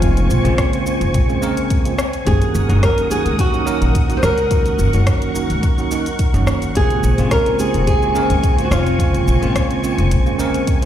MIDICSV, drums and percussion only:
0, 0, Header, 1, 2, 480
1, 0, Start_track
1, 0, Key_signature, -5, "minor"
1, 0, Tempo, 560748
1, 20, Time_signature, 4, 2, 24, 8
1, 9290, End_track
2, 0, Start_track
2, 0, Title_t, "Drums"
2, 19, Note_on_c, 9, 36, 106
2, 19, Note_on_c, 9, 42, 67
2, 19, Note_on_c, 9, 69, 47
2, 104, Note_off_c, 9, 36, 0
2, 105, Note_off_c, 9, 42, 0
2, 105, Note_off_c, 9, 69, 0
2, 146, Note_on_c, 9, 42, 32
2, 147, Note_on_c, 9, 69, 22
2, 232, Note_off_c, 9, 42, 0
2, 233, Note_off_c, 9, 69, 0
2, 260, Note_on_c, 9, 69, 78
2, 346, Note_off_c, 9, 69, 0
2, 386, Note_on_c, 9, 42, 31
2, 386, Note_on_c, 9, 69, 34
2, 471, Note_off_c, 9, 42, 0
2, 472, Note_off_c, 9, 69, 0
2, 498, Note_on_c, 9, 37, 79
2, 498, Note_on_c, 9, 42, 65
2, 499, Note_on_c, 9, 36, 108
2, 499, Note_on_c, 9, 69, 44
2, 584, Note_off_c, 9, 36, 0
2, 584, Note_off_c, 9, 37, 0
2, 584, Note_off_c, 9, 42, 0
2, 584, Note_off_c, 9, 69, 0
2, 628, Note_on_c, 9, 42, 33
2, 628, Note_on_c, 9, 69, 24
2, 713, Note_off_c, 9, 42, 0
2, 714, Note_off_c, 9, 69, 0
2, 739, Note_on_c, 9, 69, 81
2, 825, Note_off_c, 9, 69, 0
2, 867, Note_on_c, 9, 42, 45
2, 867, Note_on_c, 9, 69, 33
2, 952, Note_off_c, 9, 42, 0
2, 953, Note_off_c, 9, 69, 0
2, 979, Note_on_c, 9, 42, 66
2, 979, Note_on_c, 9, 69, 43
2, 980, Note_on_c, 9, 36, 103
2, 1065, Note_off_c, 9, 36, 0
2, 1065, Note_off_c, 9, 42, 0
2, 1065, Note_off_c, 9, 69, 0
2, 1109, Note_on_c, 9, 69, 24
2, 1194, Note_off_c, 9, 69, 0
2, 1220, Note_on_c, 9, 69, 77
2, 1305, Note_off_c, 9, 69, 0
2, 1346, Note_on_c, 9, 42, 43
2, 1347, Note_on_c, 9, 69, 36
2, 1432, Note_off_c, 9, 42, 0
2, 1432, Note_off_c, 9, 69, 0
2, 1459, Note_on_c, 9, 42, 67
2, 1459, Note_on_c, 9, 69, 43
2, 1461, Note_on_c, 9, 36, 109
2, 1545, Note_off_c, 9, 42, 0
2, 1545, Note_off_c, 9, 69, 0
2, 1546, Note_off_c, 9, 36, 0
2, 1587, Note_on_c, 9, 42, 32
2, 1588, Note_on_c, 9, 69, 24
2, 1673, Note_off_c, 9, 42, 0
2, 1673, Note_off_c, 9, 69, 0
2, 1699, Note_on_c, 9, 37, 82
2, 1700, Note_on_c, 9, 69, 78
2, 1785, Note_off_c, 9, 37, 0
2, 1785, Note_off_c, 9, 69, 0
2, 1827, Note_on_c, 9, 42, 31
2, 1827, Note_on_c, 9, 69, 34
2, 1912, Note_off_c, 9, 42, 0
2, 1913, Note_off_c, 9, 69, 0
2, 1940, Note_on_c, 9, 42, 62
2, 1940, Note_on_c, 9, 69, 46
2, 1941, Note_on_c, 9, 36, 107
2, 2025, Note_off_c, 9, 42, 0
2, 2026, Note_off_c, 9, 36, 0
2, 2026, Note_off_c, 9, 69, 0
2, 2068, Note_on_c, 9, 42, 30
2, 2069, Note_on_c, 9, 69, 23
2, 2154, Note_off_c, 9, 42, 0
2, 2154, Note_off_c, 9, 69, 0
2, 2181, Note_on_c, 9, 69, 82
2, 2267, Note_off_c, 9, 69, 0
2, 2307, Note_on_c, 9, 42, 30
2, 2308, Note_on_c, 9, 69, 35
2, 2393, Note_off_c, 9, 42, 0
2, 2394, Note_off_c, 9, 69, 0
2, 2421, Note_on_c, 9, 36, 102
2, 2422, Note_on_c, 9, 37, 76
2, 2422, Note_on_c, 9, 42, 61
2, 2423, Note_on_c, 9, 69, 46
2, 2507, Note_off_c, 9, 36, 0
2, 2508, Note_off_c, 9, 37, 0
2, 2508, Note_off_c, 9, 42, 0
2, 2508, Note_off_c, 9, 69, 0
2, 2550, Note_on_c, 9, 42, 31
2, 2550, Note_on_c, 9, 69, 21
2, 2635, Note_off_c, 9, 42, 0
2, 2636, Note_off_c, 9, 69, 0
2, 2662, Note_on_c, 9, 69, 81
2, 2748, Note_off_c, 9, 69, 0
2, 2788, Note_on_c, 9, 42, 40
2, 2789, Note_on_c, 9, 69, 34
2, 2874, Note_off_c, 9, 42, 0
2, 2875, Note_off_c, 9, 69, 0
2, 2901, Note_on_c, 9, 36, 103
2, 2902, Note_on_c, 9, 42, 64
2, 2903, Note_on_c, 9, 69, 47
2, 2986, Note_off_c, 9, 36, 0
2, 2988, Note_off_c, 9, 42, 0
2, 2988, Note_off_c, 9, 69, 0
2, 3029, Note_on_c, 9, 69, 24
2, 3114, Note_off_c, 9, 69, 0
2, 3141, Note_on_c, 9, 69, 81
2, 3227, Note_off_c, 9, 69, 0
2, 3268, Note_on_c, 9, 42, 43
2, 3268, Note_on_c, 9, 69, 33
2, 3353, Note_off_c, 9, 42, 0
2, 3354, Note_off_c, 9, 69, 0
2, 3381, Note_on_c, 9, 36, 109
2, 3382, Note_on_c, 9, 42, 62
2, 3382, Note_on_c, 9, 69, 46
2, 3467, Note_off_c, 9, 36, 0
2, 3467, Note_off_c, 9, 42, 0
2, 3468, Note_off_c, 9, 69, 0
2, 3507, Note_on_c, 9, 42, 29
2, 3507, Note_on_c, 9, 69, 23
2, 3592, Note_off_c, 9, 42, 0
2, 3593, Note_off_c, 9, 69, 0
2, 3620, Note_on_c, 9, 37, 82
2, 3621, Note_on_c, 9, 69, 83
2, 3706, Note_off_c, 9, 37, 0
2, 3706, Note_off_c, 9, 69, 0
2, 3746, Note_on_c, 9, 42, 29
2, 3746, Note_on_c, 9, 69, 36
2, 3831, Note_off_c, 9, 42, 0
2, 3832, Note_off_c, 9, 69, 0
2, 3859, Note_on_c, 9, 42, 63
2, 3859, Note_on_c, 9, 69, 45
2, 3861, Note_on_c, 9, 36, 109
2, 3944, Note_off_c, 9, 42, 0
2, 3945, Note_off_c, 9, 69, 0
2, 3947, Note_off_c, 9, 36, 0
2, 3986, Note_on_c, 9, 42, 29
2, 3986, Note_on_c, 9, 69, 23
2, 4071, Note_off_c, 9, 42, 0
2, 4072, Note_off_c, 9, 69, 0
2, 4098, Note_on_c, 9, 69, 77
2, 4184, Note_off_c, 9, 69, 0
2, 4223, Note_on_c, 9, 42, 28
2, 4224, Note_on_c, 9, 69, 35
2, 4309, Note_off_c, 9, 42, 0
2, 4309, Note_off_c, 9, 69, 0
2, 4338, Note_on_c, 9, 37, 78
2, 4338, Note_on_c, 9, 42, 66
2, 4338, Note_on_c, 9, 69, 48
2, 4341, Note_on_c, 9, 36, 104
2, 4423, Note_off_c, 9, 37, 0
2, 4423, Note_off_c, 9, 42, 0
2, 4424, Note_off_c, 9, 69, 0
2, 4426, Note_off_c, 9, 36, 0
2, 4467, Note_on_c, 9, 42, 29
2, 4468, Note_on_c, 9, 69, 23
2, 4553, Note_off_c, 9, 42, 0
2, 4553, Note_off_c, 9, 69, 0
2, 4581, Note_on_c, 9, 69, 79
2, 4667, Note_off_c, 9, 69, 0
2, 4708, Note_on_c, 9, 42, 43
2, 4709, Note_on_c, 9, 69, 35
2, 4794, Note_off_c, 9, 42, 0
2, 4794, Note_off_c, 9, 69, 0
2, 4820, Note_on_c, 9, 42, 59
2, 4820, Note_on_c, 9, 69, 42
2, 4821, Note_on_c, 9, 36, 98
2, 4905, Note_off_c, 9, 42, 0
2, 4906, Note_off_c, 9, 69, 0
2, 4907, Note_off_c, 9, 36, 0
2, 4949, Note_on_c, 9, 69, 24
2, 5034, Note_off_c, 9, 69, 0
2, 5062, Note_on_c, 9, 69, 82
2, 5147, Note_off_c, 9, 69, 0
2, 5189, Note_on_c, 9, 42, 43
2, 5190, Note_on_c, 9, 69, 35
2, 5275, Note_off_c, 9, 42, 0
2, 5276, Note_off_c, 9, 69, 0
2, 5299, Note_on_c, 9, 42, 63
2, 5300, Note_on_c, 9, 69, 42
2, 5301, Note_on_c, 9, 36, 110
2, 5385, Note_off_c, 9, 42, 0
2, 5385, Note_off_c, 9, 69, 0
2, 5386, Note_off_c, 9, 36, 0
2, 5428, Note_on_c, 9, 42, 27
2, 5429, Note_on_c, 9, 69, 24
2, 5514, Note_off_c, 9, 42, 0
2, 5514, Note_off_c, 9, 69, 0
2, 5540, Note_on_c, 9, 37, 79
2, 5540, Note_on_c, 9, 69, 80
2, 5625, Note_off_c, 9, 37, 0
2, 5626, Note_off_c, 9, 69, 0
2, 5667, Note_on_c, 9, 42, 31
2, 5667, Note_on_c, 9, 69, 35
2, 5752, Note_off_c, 9, 42, 0
2, 5753, Note_off_c, 9, 69, 0
2, 5780, Note_on_c, 9, 36, 98
2, 5782, Note_on_c, 9, 42, 64
2, 5782, Note_on_c, 9, 69, 44
2, 5866, Note_off_c, 9, 36, 0
2, 5868, Note_off_c, 9, 42, 0
2, 5868, Note_off_c, 9, 69, 0
2, 5910, Note_on_c, 9, 42, 30
2, 5911, Note_on_c, 9, 69, 22
2, 5996, Note_off_c, 9, 42, 0
2, 5996, Note_off_c, 9, 69, 0
2, 6021, Note_on_c, 9, 69, 82
2, 6107, Note_off_c, 9, 69, 0
2, 6148, Note_on_c, 9, 42, 30
2, 6148, Note_on_c, 9, 69, 34
2, 6233, Note_off_c, 9, 42, 0
2, 6234, Note_off_c, 9, 69, 0
2, 6259, Note_on_c, 9, 36, 101
2, 6259, Note_on_c, 9, 37, 76
2, 6259, Note_on_c, 9, 42, 62
2, 6260, Note_on_c, 9, 69, 46
2, 6345, Note_off_c, 9, 36, 0
2, 6345, Note_off_c, 9, 37, 0
2, 6345, Note_off_c, 9, 42, 0
2, 6346, Note_off_c, 9, 69, 0
2, 6388, Note_on_c, 9, 42, 27
2, 6388, Note_on_c, 9, 69, 21
2, 6473, Note_off_c, 9, 42, 0
2, 6474, Note_off_c, 9, 69, 0
2, 6499, Note_on_c, 9, 69, 77
2, 6585, Note_off_c, 9, 69, 0
2, 6627, Note_on_c, 9, 42, 43
2, 6628, Note_on_c, 9, 69, 35
2, 6713, Note_off_c, 9, 42, 0
2, 6714, Note_off_c, 9, 69, 0
2, 6738, Note_on_c, 9, 36, 95
2, 6740, Note_on_c, 9, 42, 61
2, 6741, Note_on_c, 9, 69, 41
2, 6824, Note_off_c, 9, 36, 0
2, 6826, Note_off_c, 9, 42, 0
2, 6826, Note_off_c, 9, 69, 0
2, 6867, Note_on_c, 9, 69, 22
2, 6953, Note_off_c, 9, 69, 0
2, 6979, Note_on_c, 9, 69, 74
2, 7065, Note_off_c, 9, 69, 0
2, 7105, Note_on_c, 9, 42, 41
2, 7105, Note_on_c, 9, 69, 33
2, 7191, Note_off_c, 9, 42, 0
2, 7191, Note_off_c, 9, 69, 0
2, 7218, Note_on_c, 9, 36, 113
2, 7221, Note_on_c, 9, 42, 60
2, 7221, Note_on_c, 9, 69, 44
2, 7304, Note_off_c, 9, 36, 0
2, 7306, Note_off_c, 9, 42, 0
2, 7307, Note_off_c, 9, 69, 0
2, 7349, Note_on_c, 9, 42, 28
2, 7349, Note_on_c, 9, 69, 22
2, 7434, Note_off_c, 9, 42, 0
2, 7435, Note_off_c, 9, 69, 0
2, 7460, Note_on_c, 9, 37, 80
2, 7461, Note_on_c, 9, 69, 78
2, 7546, Note_off_c, 9, 37, 0
2, 7547, Note_off_c, 9, 69, 0
2, 7588, Note_on_c, 9, 42, 31
2, 7589, Note_on_c, 9, 69, 34
2, 7674, Note_off_c, 9, 42, 0
2, 7674, Note_off_c, 9, 69, 0
2, 7698, Note_on_c, 9, 36, 98
2, 7702, Note_on_c, 9, 42, 65
2, 7703, Note_on_c, 9, 69, 42
2, 7784, Note_off_c, 9, 36, 0
2, 7788, Note_off_c, 9, 42, 0
2, 7788, Note_off_c, 9, 69, 0
2, 7828, Note_on_c, 9, 42, 29
2, 7829, Note_on_c, 9, 69, 21
2, 7914, Note_off_c, 9, 42, 0
2, 7914, Note_off_c, 9, 69, 0
2, 7941, Note_on_c, 9, 69, 78
2, 8027, Note_off_c, 9, 69, 0
2, 8069, Note_on_c, 9, 42, 29
2, 8069, Note_on_c, 9, 69, 32
2, 8154, Note_off_c, 9, 42, 0
2, 8155, Note_off_c, 9, 69, 0
2, 8179, Note_on_c, 9, 36, 95
2, 8181, Note_on_c, 9, 37, 74
2, 8181, Note_on_c, 9, 42, 66
2, 8181, Note_on_c, 9, 69, 41
2, 8264, Note_off_c, 9, 36, 0
2, 8266, Note_off_c, 9, 37, 0
2, 8266, Note_off_c, 9, 42, 0
2, 8267, Note_off_c, 9, 69, 0
2, 8308, Note_on_c, 9, 42, 29
2, 8309, Note_on_c, 9, 69, 22
2, 8394, Note_off_c, 9, 42, 0
2, 8394, Note_off_c, 9, 69, 0
2, 8421, Note_on_c, 9, 69, 73
2, 8507, Note_off_c, 9, 69, 0
2, 8547, Note_on_c, 9, 42, 44
2, 8547, Note_on_c, 9, 69, 31
2, 8632, Note_off_c, 9, 42, 0
2, 8633, Note_off_c, 9, 69, 0
2, 8658, Note_on_c, 9, 42, 63
2, 8658, Note_on_c, 9, 69, 41
2, 8659, Note_on_c, 9, 36, 87
2, 8743, Note_off_c, 9, 42, 0
2, 8744, Note_off_c, 9, 36, 0
2, 8744, Note_off_c, 9, 69, 0
2, 8785, Note_on_c, 9, 69, 22
2, 8871, Note_off_c, 9, 69, 0
2, 8897, Note_on_c, 9, 69, 77
2, 8982, Note_off_c, 9, 69, 0
2, 9026, Note_on_c, 9, 42, 44
2, 9026, Note_on_c, 9, 69, 33
2, 9111, Note_off_c, 9, 42, 0
2, 9112, Note_off_c, 9, 69, 0
2, 9137, Note_on_c, 9, 42, 64
2, 9138, Note_on_c, 9, 69, 43
2, 9139, Note_on_c, 9, 36, 106
2, 9223, Note_off_c, 9, 42, 0
2, 9223, Note_off_c, 9, 69, 0
2, 9225, Note_off_c, 9, 36, 0
2, 9290, End_track
0, 0, End_of_file